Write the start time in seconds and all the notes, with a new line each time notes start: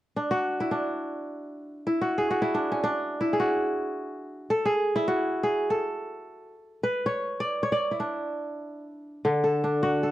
0.16 D4
0.31 F#4
0.60 E4
0.71 D4
1.87 E4
2.01 F#4
2.18 G#4
2.31 F#4
2.42 E4
2.54 D4
2.72 C#4
2.84 D4
3.21 E4
3.33 G#4
3.40 F#4
4.50 A4
4.65 G#4
4.96 E4
5.08 F#4
5.43 G#4
5.70 A4
6.83 B4
7.06 C#5
7.40 D5
7.63 C#5
7.72 D5
7.91 E4
8.00 D4
9.25 D3
9.44 A4
9.64 D4
9.83 F#4
10.03 A4